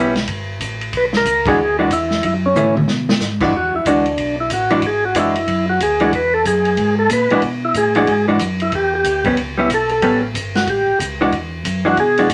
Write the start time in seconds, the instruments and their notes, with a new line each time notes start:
Already playing: tonewheel organ B1 E4, hollow-body jazz guitar G3 B3 C#4
0.16 snare, ride
0.27 tonewheel organ G1, kick, ride
0.60 tonewheel organ A1, kick, hi-hat pedal, ride
0.81 ride
0.92 tonewheel organ B1, kick, ride
0.97 tonewheel organ B4
1.13 tonewheel organ A#4, snare
1.25 tonewheel organ C#2, kick, hi-hat pedal, ride
1.46 hollow-body jazz guitar E3 G#3 D4 F#4, tonewheel organ G#4, kick, ride
1.57 tonewheel organ D2
1.79 hollow-body jazz guitar E3 G#3 D4 F#4
1.90 tonewheel organ E2 E4, kick, hi-hat pedal, ride
2.11 snare
2.23 tonewheel organ F#2 E4, kick, ride
2.46 tonewheel organ C#4
2.55 tonewheel organ A2, hollow-body jazz guitar E3 A3 C#4, hi-hat pedal, mid tom
2.77 mid tom
2.88 tonewheel organ B2, snare
3.09 snare
3.20 tonewheel organ G#2, snare, hi-hat pedal
3.41 hollow-body jazz guitar E3 G#3 D4 F#4, kick, crash
3.53 tonewheel organ E2, kick
3.57 tonewheel organ F#4
3.73 tonewheel organ E2 E4
3.85 tonewheel organ D2 D4, hollow-body jazz guitar E3 G#3 D4 F#4, kick, hi-hat pedal, ride
4.06 ride
4.18 tonewheel organ B1, kick, ride
4.40 tonewheel organ E4
4.50 tonewheel organ A1 F#4, kick, hi-hat pedal, ride
4.70 hollow-body jazz guitar E3 G#3 D4 F#4, ride
4.82 tonewheel organ G#1, kick, ride
4.86 tonewheel organ G#4
5.05 tonewheel organ F#4
5.15 tonewheel organ F#1 E4, hollow-body jazz guitar E3 G#3 D4 F#4, kick, hi-hat pedal, ride
5.35 ride
5.47 tonewheel organ F#2, kick, ride
5.69 tonewheel organ F#4
5.80 tonewheel organ D2 G#4, kick, hi-hat pedal, ride
6.00 hollow-body jazz guitar E3 G#3 D4 F#4, ride
6.12 tonewheel organ E2 B4, kick, ride
6.34 tonewheel organ A4
6.45 tonewheel organ F#2 G#4, kick, hi-hat pedal, ride
6.65 ride
6.77 tonewheel organ G#2, kick, ride
6.99 tonewheel organ A4
7.10 tonewheel organ A#2 B4, kick, hi-hat pedal, ride
7.30 tonewheel organ A#2, hollow-body jazz guitar E3 G#3 D4 F#4, ride
7.42 tonewheel organ B2, kick, ride
7.65 tonewheel organ E4
7.74 tonewheel organ A2 G#4, kick, hi-hat pedal, ride
7.95 hollow-body jazz guitar E3 G#3 D4 F#4, tonewheel organ G#4, ride
8.07 tonewheel organ G#2, kick, ride
8.28 hollow-body jazz guitar E3 G#3 D4 F#4
8.39 tonewheel organ F#2, kick, hi-hat pedal, ride
8.60 tonewheel organ E4, ride
8.71 tonewheel organ E2 G4, kick, ride
8.95 tonewheel organ G4
9.04 tonewheel organ D2, kick, hi-hat pedal, ride
9.25 hollow-body jazz guitar G3 B3 C#4, kick, ride
9.37 tonewheel organ C#2, kick, ride
9.58 hollow-body jazz guitar G3 B3 C#4, tonewheel organ E4
9.69 tonewheel organ B1, kick, hi-hat pedal, ride
9.74 tonewheel organ A4
9.89 tonewheel organ A4, ride
10.02 tonewheel organ A1, hollow-body jazz guitar G3 B3 C#4, kick, ride
10.34 tonewheel organ G1, kick, hi-hat pedal, ride
10.55 tonewheel organ F#4, snare, ride
10.67 tonewheel organ A1 G4, kick, ride
10.87 tonewheel organ A1
10.99 tonewheel organ C#2, kick, hi-hat pedal, ride
11.21 hollow-body jazz guitar E3 G#3 D4 F#4
11.32 tonewheel organ E2, kick, ride
11.64 tonewheel organ F#2, kick, hi-hat pedal, ride
11.85 hollow-body jazz guitar E3 G#3 D4 F#4, tonewheel organ F#4
11.97 tonewheel organ B2 G#4, kick, ride
12.17 hollow-body jazz guitar E3 G#3 D4 F#4, ride
12.29 tonewheel organ A2, kick, hi-hat pedal, ride